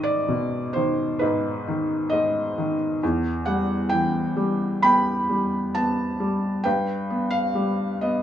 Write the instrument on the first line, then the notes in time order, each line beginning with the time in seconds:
felt piano
Already playing: G#2 D#3 B4 D#5
0.03 D5
0.28 B2
0.73 D#3 C5
1.19 G#2 D#4 B4
1.68 D#3
2.10 G#2 D#5
2.58 D#3
3.03 E2
3.45 G3 F#5
3.89 E3 G5
4.36 G3
4.82 B3 G5 B5
5.29 G3
5.75 B3 A5
6.20 G3
6.64 G2 B4 G5
7.10 B3
7.31 F5
7.55 G3
8.01 B3 D#5